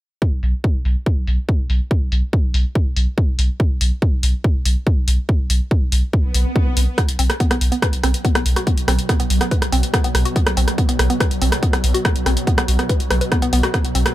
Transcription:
0.22 kick
0.32 B1
0.43 B1, open hi-hat
0.64 kick
0.75 B1
0.85 B1, open hi-hat
1.06 kick
1.17 B1
1.27 B1, open hi-hat
1.49 kick
1.59 B1
1.70 B1, open hi-hat
1.91 kick
2.02 B1
2.12 B1, open hi-hat
2.33 kick
2.44 B1
2.54 B1, open hi-hat
2.75 kick
2.86 B1
2.96 B1, open hi-hat
3.18 kick
3.28 B1
3.39 B1, open hi-hat
3.60 kick
3.70 B1
3.81 B1, open hi-hat
4.02 kick
4.13 B1
4.23 B1, open hi-hat
4.44 kick
4.55 B1
4.65 B1, open hi-hat
4.87 kick
4.97 B1
5.08 B1, open hi-hat
5.29 kick
5.39 B1
5.50 B1, open hi-hat
5.71 kick
5.82 B1
5.92 B1, open hi-hat
6.13 kick, swell
6.24 B1
6.34 B1, open hi-hat
6.56 kick
6.66 B1
6.77 B1, open hi-hat
6.98 B2 F#3 B3, kick, cross-stick, closed hi-hat
7.09 B1, closed hi-hat
7.19 B1 C4, open hi-hat
7.30 cross-stick, closed hi-hat
7.40 B3, kick, closed hi-hat
7.51 B1 B3, cross-stick, closed hi-hat
7.61 B1, open hi-hat
7.72 B3, closed hi-hat
7.82 B4, kick, cross-stick, closed hi-hat
7.93 B1, closed hi-hat
8.03 B1 C4, cross-stick, open hi-hat
8.14 closed hi-hat
8.25 B3, kick, closed hi-hat
8.35 B1 B3, cross-stick, closed hi-hat
8.46 B1, open hi-hat
8.56 F#4, cross-stick, closed hi-hat
8.67 B3, kick, closed hi-hat
8.77 B1, closed hi-hat
8.88 B1 C4, cross-stick, open hi-hat
8.99 closed hi-hat
9.09 B3, kick, cross-stick, closed hi-hat
9.20 B1 B3, closed hi-hat
9.30 B1, open hi-hat
9.41 B3, cross-stick, closed hi-hat
9.51 B4, kick, closed hi-hat
9.62 B1, cross-stick, closed hi-hat
9.72 B1 C4, open hi-hat
9.83 closed hi-hat
9.94 B3, kick, cross-stick, closed hi-hat
10.04 B1 B3, closed hi-hat
10.15 B1, cross-stick, open hi-hat
10.25 F#4, closed hi-hat
10.36 B3, kick, closed hi-hat
10.47 B1, cross-stick, closed hi-hat
10.57 B1 C4, open hi-hat
10.68 cross-stick, closed hi-hat
10.78 B3, kick, closed hi-hat
10.89 B1 B3, closed hi-hat
10.99 B1, cross-stick, open hi-hat
11.10 B3, closed hi-hat
11.20 B4, kick, cross-stick, closed hi-hat
11.31 B1, closed hi-hat
11.42 B1 C4, open hi-hat
11.52 cross-stick, closed hi-hat
11.63 B3, kick, closed hi-hat
11.73 B1 B3, cross-stick, closed hi-hat
11.84 B1, open hi-hat
11.94 F#4, closed hi-hat
12.05 B3, kick, cross-stick, closed hi-hat
12.16 B1, closed hi-hat
12.26 B1 C4, cross-stick, open hi-hat
12.37 closed hi-hat
12.47 B3, kick, closed hi-hat
12.58 B1 B3, cross-stick, closed hi-hat
12.68 B1, open hi-hat
12.79 B3, cross-stick, closed hi-hat
12.89 B4, kick, closed hi-hat
13.00 B1, closed hi-hat
13.11 B1 B4, cross-stick, open hi-hat
13.21 B4, closed hi-hat
13.32 B3, kick, cross-stick, closed hi-hat
13.42 B1 B3, closed hi-hat
13.53 B1 B3, open hi-hat
13.63 F#4, cross-stick, closed hi-hat
13.74 B3, kick, cross-stick, closed hi-hat
13.85 B1, closed hi-hat
13.95 B1 C4, open hi-hat
14.06 cross-stick, closed hi-hat

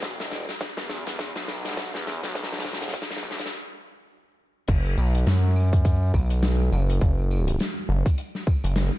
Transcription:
0.02 E1, kick, snare, closed hi-hat, tambourine
0.20 snare, tambourine
0.32 snare, tambourine
0.49 snare, closed hi-hat, tambourine
0.61 kick, snare, closed hi-hat, tambourine
0.77 E2, snare, tambourine
0.90 snare, tambourine
1.07 E2, snare, closed hi-hat, tambourine
1.19 kick, snare, closed hi-hat, tambourine
1.36 B1, snare, tambourine
1.48 snare, tambourine
1.65 snare, closed hi-hat, tambourine
1.68 snare
1.71 snare
1.74 kick, snare, tambourine
1.77 snare, closed hi-hat
1.81 snare
1.86 snare
1.90 snare
1.94 E2, snare, tambourine
2.07 snare, tambourine
2.23 B1, snare, closed hi-hat, tambourine
2.35 kick, snare, closed hi-hat, tambourine
2.43 snare
2.53 snare, tambourine
2.55 snare, tambourine
2.59 tambourine
2.61 tambourine
2.63 snare, tambourine
2.65 E1, tambourine
2.73 snare
2.81 snare, closed hi-hat, tambourine
2.88 snare
2.94 kick, closed hi-hat, tambourine
3.02 snare
3.11 snare, tambourine
3.17 snare
3.23 B1, tambourine
3.31 snare
3.39 snare, closed hi-hat, tambourine
3.46 snare
4.68 F#1, kick, closed hi-hat, crash, tambourine
4.86 tambourine
4.98 B1, tambourine
5.15 closed hi-hat, tambourine
5.27 F#2, snare, closed hi-hat, tambourine
5.44 tambourine
5.56 tambourine
5.73 kick, closed hi-hat
5.85 kick, closed hi-hat, tambourine
6.03 tambourine
6.14 B1, kick, tambourine
6.30 closed hi-hat, tambourine
6.43 snare, closed hi-hat, tambourine
6.60 tambourine
6.72 F#1, tambourine
6.89 closed hi-hat, tambourine
7.01 F#1, kick, closed hi-hat, tambourine
7.18 tambourine
7.31 tambourine
7.48 closed hi-hat, tambourine
7.59 snare, closed hi-hat, tambourine
7.78 tambourine
7.89 F#1
8.06 kick, closed hi-hat, tambourine
8.18 closed hi-hat, tambourine
8.35 snare, tambourine
8.47 kick, tambourine
8.64 F#1, closed hi-hat, tambourine
8.76 snare, closed hi-hat, tambourine
8.93 tambourine

